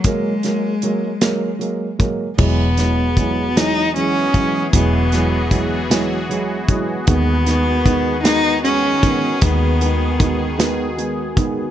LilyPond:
<<
  \new Staff \with { instrumentName = "Analog synth pad" } { \time 6/8 \key e \lydian \tempo 4. = 51 << { r2. | <e gis'>2.~ | <e gis'>2. | <dis gis'>2.~ |
<dis gis'>2. | } \\ { r2. | <b fis'>2.~ | <b fis'>2.~ | <b fis'>2.~ |
<b fis'>2. | } >> }
  \new Staff \with { instrumentName = "Cello" } { \time 6/8 \key e \lydian gis2 r4 | b4. dis'8 cis'4 | b4. r4. | b4. dis'8 cis'4 |
b4. r4. | }
  \new Staff \with { instrumentName = "Upright piano" } { \clef bass \time 6/8 \key e \lydian <fis gis ais>8 <fis gis ais>8 <fis gis ais>8 <fis gis ais>8 <fis gis ais>8 <fis gis ais>8 | <e fis gis>8 <e fis gis>8 <e fis gis>8 <e fis gis>8 <e fis gis>8 <e fis gis>8 | <e fis gis>8 <e fis gis>8 <e fis gis>8 <e fis gis>8 <fis gis>8 <e fis gis>8 | <dis gis b>8 <dis gis b>8 <dis gis b>8 <dis gis b>8 <gis b>8 <dis gis b>8 |
<dis gis b>8 <dis gis b>8 <dis gis b>8 <dis gis b>8 <gis b>8 <dis gis b>8 | }
  \new Staff \with { instrumentName = "Fingered electric bass" } { \clef bass \time 6/8 \key e \lydian r2. | e,,2. | e,,2. | dis,2. |
dis,2. | }
  \new DrumStaff \with { instrumentName = "Drums" } \drummode { \time 6/8 <hh bd>8 <hh sn>8 hh8 <hh sn>8 hh8 <hh bd>8 | <cymc bd>8 <hh sn>8 <hh bd>8 <hh sn>8 hh8 <hh bd>8 | <hh bd>8 <hh sn>8 <hh bd>8 <hh sn>8 hh8 <hh bd>8 | <hh bd>8 <hh sn>8 <hh bd>8 <hh sn>8 hh8 <hh bd>8 |
<hh bd>8 hh8 <hh bd>8 <hh sn>8 hh8 <hh bd>8 | }
>>